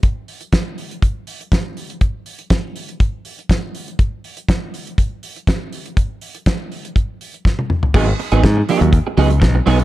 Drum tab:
CC |----------------|----------------|----------------|----------------|
HH |x-oxx-oxx-oxx-ox|x-oxx-oxx-oxx-ox|x-oxx-oxx-oxx-ox|x-oxx-oxx-ox----|
SD |----o-------o---|----o-------o---|----o-------o---|----o-------o---|
T1 |----------------|----------------|----------------|-------------o--|
T2 |----------------|----------------|----------------|--------------o-|
FT |----------------|----------------|----------------|---------------o|
BD |o---o---o---o---|o---o---o---o---|o---o---o---o---|o---o---o---o---|

CC |x---------------|
HH |--oxx-oxx-oxx-ox|
SD |----o-------o---|
T1 |----------------|
T2 |----------------|
FT |----------------|
BD |o---o---o---o---|